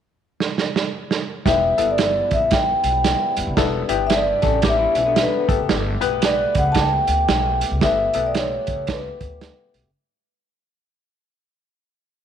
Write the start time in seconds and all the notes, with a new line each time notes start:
0.40 snare
0.58 snare
0.76 snare
1.11 snare
1.45 E1 G3 B3 E4 G4 E5, kick, snare, closed hi-hat
1.78 G1 B3 E4 A4, closed hi-hat
1.91 D5
1.98 snare, closed hi-hat
2.31 A1 E5, kick, closed hi-hat
2.51 G5, kick, snare, closed hi-hat
2.84 B1, closed hi-hat
3.04 snare, closed hi-hat
3.37 G1, closed hi-hat
3.47 F#1
3.56 E1 B3 D4 E4 A4, kick, snare, closed hi-hat
3.89 G1 B3 E4 G4, closed hi-hat
4.07 E5, snare, closed hi-hat
4.13 D5
4.42 A1 C#4 A4, kick, snare, closed hi-hat
4.62 B3 G4, kick, snare, closed hi-hat
4.68 E5
4.79 G3 E4
4.95 B1 E3 C#4, closed hi-hat
5.06 D3 B3
5.16 snare, closed hi-hat
5.21 B4
5.48 G1 A3 B3 G4 A4, kick, closed hi-hat
5.59 F#1
5.69 G1, snare, closed hi-hat
6.01 B1 B3 G4 B4, closed hi-hat
6.22 D5, snare, closed hi-hat
6.55 C#2 F#5, kick, closed hi-hat
6.72 A5, kick, snare, closed hi-hat
6.80 G5
7.07 D2, closed hi-hat
7.28 B1, snare, closed hi-hat
7.61 closed hi-hat
7.71 C#2
7.81 G1 B3 G4 A4 E5, kick, snare, closed hi-hat
8.14 B1 B3 G4 A4, closed hi-hat
8.26 D5
8.35 C#5, snare, closed hi-hat
8.67 C#2, kick, closed hi-hat
8.87 B4, kick, snare, closed hi-hat
9.21 D2, kick, closed hi-hat
9.41 snare, closed hi-hat
9.74 B1, closed hi-hat
9.84 F#1